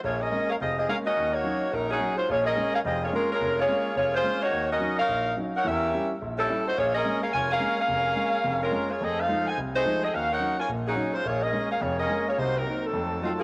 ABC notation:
X:1
M:4/4
L:1/8
Q:"Swing" 1/4=214
K:Bbm
V:1 name="Saxophone section"
[B,FAd] [DABe]2 [DABf] [CFAe] [CFAe] [DABf] [DGBe]- | [DGBe] [B,EGd]3 [G,DEB] [G,DEA]2 [A,DFc] | [B,FAd] [DABe]2 [DABf] [CFAe] [B,FAd] [A,DFB] [A,DFB]- | [A,DFB] [B,FAd]3 [B,FAd] [B,FAc]2 [B,EGd]- |
[B,EGd] [DGBe]2 [EBdf]3 z [EBdg] | [^C=GB=e]3 z2 [=G,C=E=A]2 [=A,_E_G=c] | [B,FAd] [DABe]2 [DABf] [FBda] [DABf]2 [DABf]- | [DABf]4- [DABf] [A,DFB]2 [B,FAd] |
[C^G=Ae] [EAcf]2 [EAc^g] z [=A,EGc]2 [CGAe] | [DGBf] [EBdg]2 [FBda] z [G,DEA]2 [A,DFc] | [B,FAd] [DABe]2 [DABf] [B,FAd] [DABe]2 [B,FAd] | [B,EGc] [G,CEB]2 [G,CE=A]3 [=A,CEF] [F,B,D_A] |]
V:2 name="Grand piano" clef=bass
B,,,2 [A,B,D] z F,,,2 [A,B,D] z | E,,2 [G,DE] z B,,,2 [G,DE] z | [B,,,B,,]2 [A,B,D] z [F,,,F,,]2 [A,B,D] z | F,,,2 [A,B,D] z F,,,2 [A,B,D] z |
E,,2 [G,DE] z B,,,2 [G,DE] z | [=E,,=E,]2 [=G,^C=E] z B,,,2 [G,CE] z | B,,,2 [A,B,D] z F,,,2 [A,B,D] z | F,,,2 [A,B,D] z [F,,,F,,]2 [A,B,D] z |
[F,,=A,]2 [F,^G,A,E] z C,,2 [F,G,A,E] z | E,,2 [G,DE] z [B,,,B,,]2 [G,DE] z | [B,,,B,,]2 [A,B,D] z [F,,,F,,]2 [A,B,D] z | [C,,C,]2 [B,CE] z [F,,=A,]2 [G,A,EF] z |]